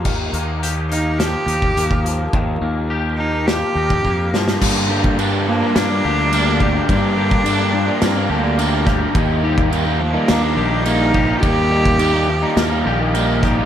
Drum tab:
CC |x---------------|----------------|x---x---x---x---|x---x---x---x---|
HH |--x-x-x-x-x-x-x-|----------------|----------------|----------------|
SD |--------o-------|--------o-----oo|--------o-------|--------o-----o-|
BD |o----------o-o--|o----------oo---|o--o----------o-|o--o----------o-|

CC |x---x---x---x---|x---x---x---x---|
HH |----------------|----------------|
SD |--------o-------|--------o-----o-|
BD |o--o----------o-|o--o----------o-|